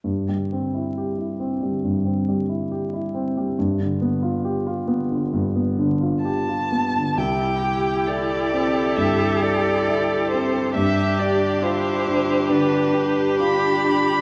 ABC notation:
X:1
M:4/4
L:1/16
Q:1/4=68
K:C
V:1 name="Violin"
z16 | z12 a4 | g4 d4 e2 d4 c2 | e2 d2 c4 B4 b4 |]
V:2 name="Cello"
z16 | z16 | E2 G2 A12 | G4 E4 D2 G6 |]
V:3 name="Violin"
z16 | z16 | G16 | G16 |]
V:4 name="Viola"
z16 | z16 | E16 | D16 |]
V:5 name="Grand piano"
G,, G, C E G E C G, G,, C G, E G E C G, | G,, D, B, F G F B, D, G,, B, D, F G F B, D, | C,,2 G2 E2 C2 G,,2 G2 E2 C2 | G,,2 G2 F2 D2 D,2 G2 F2 D2 |]